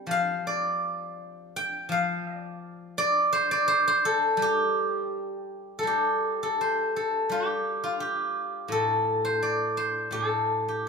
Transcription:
guzheng
Already playing: G3 A3 C4 D4 G5
0.07 F3
0.11 F5
0.47 D5
1.56 G5
1.89 F3 F5
2.37 D5
2.98 D5
3.33 C5
3.51 D5
3.68 C5
3.88 C5
4.05 A4
4.37 G3
4.42 G4
5.79 A4
5.83 G3 G4
6.43 A4
6.61 C5
6.96 A4
7.29 G3 G4
7.84 F4
8.00 G4
8.68 A2 A4
9.25 C5
9.43 D5
9.77 C5
10.11 A2 A4
10.68 G4

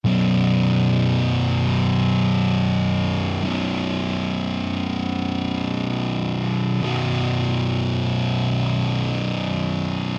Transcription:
distorted electric guitar
0.05 B1 F#2 B2
3.43 B1 F#2 B2
6.82 B1 F#2 B2

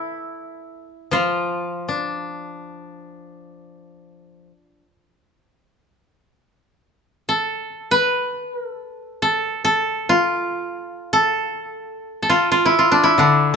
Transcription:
koto
Already playing: A3 E4 A4 B4
1.11 F3 F4
1.88 D4
7.29 A4
7.91 B4
8.56 A#4
8.71 A4
9.22 A4
9.65 A4
10.09 F4
11.13 A4
12.23 A4
12.30 F4
12.52 F4
12.66 E4
12.79 F4
12.92 D4
13.04 E4
13.18 D3 D4

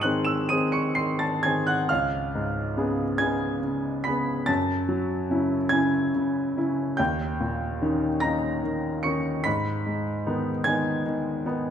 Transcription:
grand piano
Already playing: G#2 G#3 C6 C#6 D#6 C7 C#7 D#7
0.01 D#3 C4 G#4 F#6 F#7
0.25 E6 E7
0.49 D#3 C4 G#4 D#6 D#7
0.72 C#6 C#7
0.95 D#3 C6 C7
1.19 A5 A6
1.43 D#3 C4 G#4 G#5 G#6
1.67 F#5 F#6
1.89 C#2 F5 F6
2.35 G#2
2.77 C#3 B3 G#4
3.18 C#3 B3 G#4 G#5 G#6
3.62 C#3
4.04 C#3 B3 G#4 B5 B6
4.46 F#2 A5 A6
4.89 F#3
5.30 C#3 C#4 E4
5.69 C#3 C#4 E4 G#5 G#6
6.15 C#3
6.57 C#3 C#4 E4
6.97 D#2 G5 G6
7.41 A#2
7.82 D#3 C#4 D#4
8.20 D#3 C#4 D#4 A#5 A#6
8.63 D#3
9.03 D#3 C#4 D#4 C#6 C#7
9.44 G#2 B5 B6
9.86 G#3
10.27 D#3 B3 D#4
10.64 D#3 B3 D#4 G#5 G#6
11.06 D#3
11.45 D#3 B3 D#4

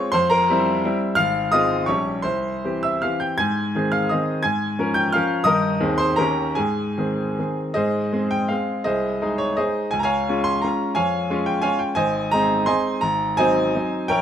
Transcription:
grand piano
Already playing: F4 C#5 C#6
0.12 F2 C5 C6
0.30 A#4 A#5
0.50 G3 C4 E4
0.85 G3 C4 E4
1.15 G#1 F5 F6
1.52 G#3 C4 F4 D#5 D#6
1.86 A#1 G3 C#4 G4 C#5 C#6
2.22 C2 C5 C6
2.65 E3 C4 G4
2.83 E5 E6
3.02 E3 C4 G4 F5 F6
3.20 G5 G6
3.38 G#2 G#5 G#6
3.75 D#3 C4 G#4
3.92 F5 F6
4.09 D#3 C4 G#4 D#5 D#6
4.43 G#2 G#5 G#6
4.79 F3 C#4 A#4
4.94 G5 G6
5.13 F3 C#4 A#4 F5 F6
5.44 G2 D#3 D#4 A#4 D#5 D#6
5.80 D#2 D#3 C4 G#4
5.98 C5 C6
6.16 D#2 D#3 C#4 G4 A#4 A#5
6.55 G#2 G#4 G#5
6.98 D#3 C4 G#4
7.39 D#3 C4 G#4
7.74 G#2 G#4 C5 D#5
8.12 G#3 C4 G#4
8.31 G5
8.48 G#3 C4 G#4 F5
8.84 C2 G#4 C5 D#5
9.22 G#3 D#4 G#4
9.38 C#5
9.57 G#3 D#4 G#4 C5 D#5
9.91 C#2 G#5
9.99 G#5 A#5
10.04 C#5 F5
10.29 G#3 C#4 F4
10.44 C6
10.62 G#3 C#4 F4 A#5
10.95 F2 C#5 F5 G#5
11.30 G#3 C#4 F4
11.46 G5
11.62 G#3 C#4 F4 C#5 F5 G#5
11.79 G5
11.95 G#1 C5 D#5 G#5
12.31 G#3 C4 D#4 A#5
12.66 G#3 C4 D#4 D#5 G#5 C6
13.01 G#1 A#5
13.37 F#3 C4 D#4 C5 D#5 G#5
13.76 F#3 C4 D#4
14.08 A#1 A#4 C#5 G5

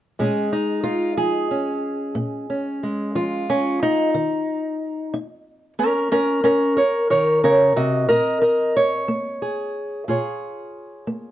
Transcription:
steel-string acoustic guitar
0.19 A#2 G#3 C#4 G#4
0.53 D#4
0.83 F4
1.17 F3 G#4
1.51 C#4
2.15 A#2
2.50 C#4
2.83 G#3
3.15 F3 F4
3.50 C#4
3.83 D#4
4.14 D#3
5.14 D#4
5.79 C#4 A#4
6.12 C#4 A#4
6.44 C#4 A#4
6.77 A#4 C#5
7.10 D#3 A#4 C#5
7.44 C#3 A#4 C#5
7.76 C3 F#4 D#5
8.09 A#2 A#4 D#5
8.42 A#4 D#5
8.77 C#5
9.08 A#3
9.42 G#4
10.08 A#2 F4 G#4 C#5
11.07 A#3

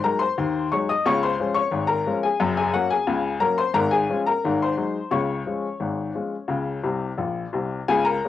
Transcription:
upright piano
0.04 F#3 G#3 D#4 A#4 A#5
0.19 C5 C6
0.38 D#2 D#3
0.72 F#3 G#3 D#4 C#5 C#6
0.89 D#5 D#6
1.06 C#2 C#3 C#5 C#6
1.23 C5 C6
1.40 F3 G#3 C#4
1.55 C#5 C#6
1.71 G#1 G#2
1.87 A#4 A#5
2.06 F3 G#3 C#4
2.23 G#4 G#5
2.40 F#1 F#2
2.57 G#4 G#5
2.73 F#3 A#3 C#4 F#4 F#5
2.90 G#4 G#5
3.07 C#2 C#3
3.40 F#3 A#3 C#4 A#4 A#5
3.58 C5 C6
3.74 G#1 G#2 A#4 A#5
3.91 G#4 G#5
4.10 F3 G#3 C#4
4.26 A#4 A#5
4.44 G#1 G#2
4.62 C5 C6
4.77 F#3 G#3 D#4
5.11 C#2 C#3 C#5 C#6
5.46 F3 G#3 C#4
5.80 G#1 G#2
6.15 F3 G#3 C#4
6.48 C#2 C#3
6.84 C2 C3
7.18 A#1 A#2
7.53 C2 C3
7.88 C#2 C#3 G#4 G#5
8.05 A#4 A#5
8.25 F3 G#3 C#4

